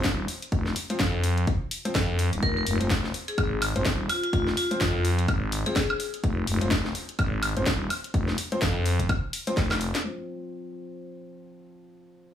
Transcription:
0.04 0.27 D#1 medium
0.04 kick loud
0.04 snare loud
0.04 closed hi-hat soft
0.28 open hi-hat medium
0.42 closed hi-hat medium
0.52 0.74 F1 loud
0.52 kick loud
0.52 closed hi-hat soft
0.66 snare soft
0.76 open hi-hat loud
0.90 0.98 F3 medium
0.90 0.98 C4 medium
0.90 0.98 C5 medium
0.90 closed hi-hat medium
1.00 1.46 F2 loud
1.00 kick loud
1.00 snare loud
1.00 closed hi-hat soft
1.24 open hi-hat loud
1.38 closed hi-hat medium
1.47 kick loud
1.47 closed hi-hat medium
1.71 open hi-hat loud
1.85 1.93 F3 medium
1.85 1.93 C4 medium
1.85 1.93 C5 medium
1.85 closed hi-hat medium
1.95 2.31 F2 medium
1.95 kick loud
1.95 snare loud
1.95 closed hi-hat soft
2.19 open hi-hat medium
2.33 2.41 D#1 loud
2.33 closed hi-hat medium
2.43 2.65 F1 medium
2.43 2.52 A#4 medium
2.43 kick loud
2.43 closed hi-hat soft
2.57 2.63 A#4 medium
2.67 2.78 F1 loud
2.67 open hi-hat loud
2.80 3.13 F1 medium
2.80 2.88 F3 medium
2.80 2.88 C4 medium
2.80 2.88 C5 medium
2.80 closed hi-hat medium
2.90 kick loud
2.90 snare loud
2.90 closed hi-hat soft
3.04 snare soft
3.14 open hi-hat medium
3.28 3.34 G#4 medium
3.28 closed hi-hat medium
3.38 3.73 G#1 loud
3.38 3.47 G#4 medium
3.38 kick loud
3.38 closed hi-hat soft
3.38 high woodblock medium
3.62 open hi-hat loud
3.62 high woodblock medium
3.76 3.84 G#1 medium
3.76 3.83 F3 medium
3.76 3.83 C4 medium
3.76 3.83 C5 medium
3.76 closed hi-hat medium
3.85 4.08 D#1 medium
3.85 kick loud
3.85 snare loud
3.85 closed hi-hat soft
4.09 4.21 F4 medium
4.09 open hi-hat medium
4.09 high woodblock medium
4.24 4.30 F4 medium
4.24 closed hi-hat medium
4.33 4.55 F1 medium
4.33 4.42 F4 medium
4.33 kick loud
4.33 closed hi-hat medium
4.47 snare soft
4.57 5.05 F4 medium
4.57 open hi-hat loud
4.71 4.79 F3 medium
4.71 4.79 C4 medium
4.71 4.79 C5 medium
4.71 closed hi-hat medium
4.81 5.27 F2 loud
4.81 kick loud
4.81 snare loud
4.81 closed hi-hat soft
5.05 open hi-hat medium
5.19 closed hi-hat medium
5.28 5.64 G#1 loud
5.28 kick loud
5.28 closed hi-hat soft
5.28 high woodblock medium
5.52 open hi-hat loud
5.66 5.74 F3 medium
5.66 5.74 C4 medium
5.66 6.00 G#4 medium
5.66 5.74 C5 medium
5.66 closed hi-hat medium
5.76 kick loud
5.76 snare loud
5.76 closed hi-hat medium
5.90 high woodblock medium
6.00 open hi-hat medium
6.14 closed hi-hat medium
6.24 6.46 F1 loud
6.24 kick loud
6.24 closed hi-hat medium
6.47 6.59 F1 loud
6.47 open hi-hat loud
6.61 6.93 F1 loud
6.61 6.69 F3 medium
6.61 6.69 C4 medium
6.61 6.69 C5 medium
6.61 closed hi-hat medium
6.71 kick loud
6.71 snare loud
6.71 closed hi-hat soft
6.85 snare soft
6.95 open hi-hat medium
7.09 closed hi-hat medium
7.19 7.54 G#1 loud
7.19 kick loud
7.19 closed hi-hat medium
7.19 high woodblock medium
7.43 open hi-hat loud
7.43 high woodblock medium
7.57 7.65 G#1 medium
7.57 7.64 F3 medium
7.57 7.64 C4 medium
7.57 7.64 C5 medium
7.57 closed hi-hat medium
7.66 7.89 D#1 medium
7.66 kick loud
7.66 snare loud
7.66 closed hi-hat medium
7.90 open hi-hat medium
7.90 high woodblock medium
8.04 closed hi-hat medium
8.14 8.36 F1 loud
8.14 kick loud
8.14 closed hi-hat medium
8.28 snare soft
8.38 open hi-hat loud
8.52 8.60 F3 medium
8.52 8.60 C4 medium
8.52 8.60 C5 medium
8.52 closed hi-hat medium
8.62 9.08 F2 medium
8.62 kick loud
8.62 snare loud
8.62 closed hi-hat medium
8.86 open hi-hat medium
8.99 kick medium
8.99 closed hi-hat medium
9.09 kick loud
9.09 closed hi-hat medium
9.09 high woodblock medium
9.33 open hi-hat loud
9.47 9.55 F3 medium
9.47 9.55 C4 medium
9.47 9.55 C5 medium
9.47 closed hi-hat medium
9.57 9.93 F1 medium
9.57 kick loud
9.57 snare medium
9.57 closed hi-hat medium
9.71 snare medium
9.71 high woodblock medium
9.81 open hi-hat medium
9.95 snare medium
9.95 closed hi-hat medium
10.05 12.34 F3 medium
10.05 12.34 C4 medium
10.05 12.34 C5 medium
10.05 crash medium

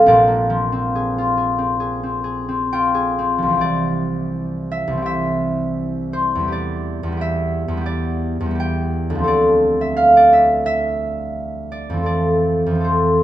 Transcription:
0.00 0.11 F1 medium
0.00 0.11 F2 medium
0.00 0.10 C3 medium
0.00 0.11 G3 medium
0.00 0.71 C4 medium
0.00 0.90 C5 medium
0.00 0.10 E5 medium
0.00 3.57 F5 loud
0.06 3.60 A#1 medium
0.06 3.61 A#2 medium
0.06 3.61 A#4 medium
0.06 3.60 D5 medium
0.28 3.59 A#3 medium
0.50 3.37 F3 medium
0.72 1.57 C4 medium
0.95 1.36 G#4 medium
1.18 2.72 F4 medium
1.37 1.79 G#4 medium
1.58 2.02 C4 medium
1.80 2.23 G#4 medium
2.03 2.47 C4 medium
2.24 2.93 G#4 medium
2.49 3.17 C4 medium
2.73 3.61 F4 medium
2.73 6.63 G5 loud
2.94 3.60 G#4 medium
3.19 3.51 C4 medium
3.38 3.61 F3 medium
3.43 4.86 C2 medium
3.48 4.91 E3 medium
3.53 4.96 C4 soft
3.58 5.01 G4 medium
3.58 6.51 D5 medium
4.71 5.05 E5 medium
4.88 6.43 C2 medium
4.92 6.45 E3 medium
4.97 6.48 C4 medium
5.02 6.47 G4 medium
5.02 7.20 E5 medium
6.13 6.51 C5 medium
6.35 7.02 E2 medium
6.35 7.06 G3 soft
6.44 7.11 B3 medium
6.44 7.16 G4 medium
6.52 7.85 D5 medium
7.03 7.67 E2 medium
7.03 7.71 G3 medium
7.12 7.76 B3 medium
7.17 7.80 G4 medium
7.21 9.33 E5 loud
7.68 8.39 E2 medium
7.72 8.45 G3 medium
7.77 8.50 B3 medium
7.77 8.54 G4 medium
7.86 9.26 D5 medium
8.40 9.22 E2 medium
8.46 9.25 G3 medium
8.51 9.27 B3 medium
8.55 9.30 G4 medium
8.60 9.32 G5 loud
9.10 12.03 D2 medium
9.15 13.05 F3 medium
9.15 11.96 C4 medium
9.24 12.02 A4 medium
9.24 10.16 D5 medium
9.81 10.09 E5 medium
9.97 10.26 F5 loud
10.17 10.44 D5 medium
10.33 10.65 E5 medium
10.66 13.23 E5 loud
11.72 12.05 D5 medium
11.90 12.65 F2 medium
11.90 12.69 E3 soft
11.97 12.74 C4 soft
12.03 12.79 A4 soft
12.03 13.23 D5 medium
12.66 13.23 F2 medium
12.71 13.23 E3 soft
12.75 13.23 C4 soft
12.80 13.23 A4 soft
12.80 13.23 C5 medium

